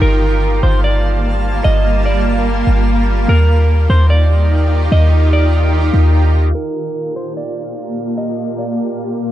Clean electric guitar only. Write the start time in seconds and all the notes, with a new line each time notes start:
0.02 A#4
0.63 C5
0.84 D5
1.64 D#5
2.06 D5
3.29 A#4
3.90 C5
4.10 D5
4.92 D#5
5.33 D5
6.55 A#4
7.16 C5
7.37 D5
8.18 D#5
8.59 D5